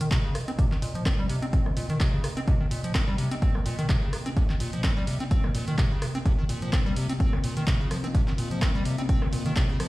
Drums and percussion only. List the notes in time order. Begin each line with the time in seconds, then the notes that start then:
0.01 closed hi-hat
0.11 kick, clap, closed hi-hat
0.35 cross-stick, open hi-hat
0.48 closed hi-hat
0.59 kick, closed hi-hat
0.72 clap
0.82 open hi-hat
0.95 closed hi-hat
1.06 kick, cross-stick, clap, closed hi-hat
1.29 open hi-hat
1.43 closed hi-hat
1.53 kick, closed hi-hat
1.66 cross-stick
1.77 open hi-hat
1.90 closed hi-hat
2.00 kick, clap, closed hi-hat
2.24 cross-stick, open hi-hat
2.37 closed hi-hat
2.48 kick, closed hi-hat
2.71 open hi-hat
2.84 closed hi-hat
2.95 kick, cross-stick, clap, closed hi-hat
3.18 open hi-hat
3.31 closed hi-hat
3.42 kick, closed hi-hat
3.55 cross-stick
3.66 open hi-hat
3.79 closed hi-hat
3.89 kick, clap, closed hi-hat
4.13 cross-stick, open hi-hat
4.26 closed hi-hat
4.37 kick, closed hi-hat
4.50 clap
4.60 open hi-hat
4.73 closed hi-hat
4.84 kick, cross-stick, clap, closed hi-hat
5.07 open hi-hat
5.20 closed hi-hat
5.31 kick, closed hi-hat
5.44 cross-stick
5.55 open hi-hat
5.68 closed hi-hat
5.78 kick, clap, closed hi-hat
6.02 cross-stick, open hi-hat
6.15 closed hi-hat
6.26 kick, closed hi-hat
6.49 open hi-hat
6.62 closed hi-hat
6.73 kick, cross-stick, clap, closed hi-hat
6.96 open hi-hat
7.09 closed hi-hat
7.20 kick, closed hi-hat
7.33 cross-stick
7.44 open hi-hat
7.57 closed hi-hat
7.67 kick, clap, closed hi-hat
7.91 cross-stick, open hi-hat
8.04 closed hi-hat
8.15 kick, closed hi-hat
8.28 clap
8.38 open hi-hat
8.51 closed hi-hat
8.62 kick, cross-stick, clap, closed hi-hat
8.85 open hi-hat
8.98 closed hi-hat
9.09 kick, closed hi-hat
9.22 cross-stick
9.33 open hi-hat
9.46 closed hi-hat
9.56 kick, clap, closed hi-hat
9.80 cross-stick, open hi-hat